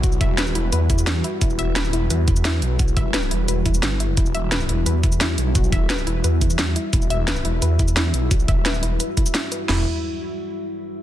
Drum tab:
CC |----------------|----------------|----------------|----------------|
HH |x-x-x-x-x-x-x-x-|x-x-x-x-x-x-x-x-|x-x-x-x-x-x-x-x-|x-x-x-x-x-x-x-x-|
SH |xx--xx--x-xxx---|xx--xx--x-xxx---|xx--xx--x-xxx---|xx--xx--x-xxx---|
SD |----o-------o---|----o-------o---|----o-------o---|----o-------o---|
FT |----------------|----------------|----------------|----------------|
BD |o-o-------o-----|o---------o-----|o-o-------o-----|o---------o-----|

CC |----------------|----------------|----------------|x---------------|
HH |x-x-x-x-x-x-x-x-|x-x-x-x-x-x-x-x-|x-x-x-x-x-x-x-x-|----------------|
SH |xx--xx--x-xxx---|xx--xx--x-xxx---|xx--xx--x-xxx-x-|----------------|
SD |----o-------o---|----o-------o---|----o-------o---|o---------------|
FT |----------------|----------------|----------------|o---------------|
BD |o-o-------o-----|o---------o-----|o-o-------o-----|----------------|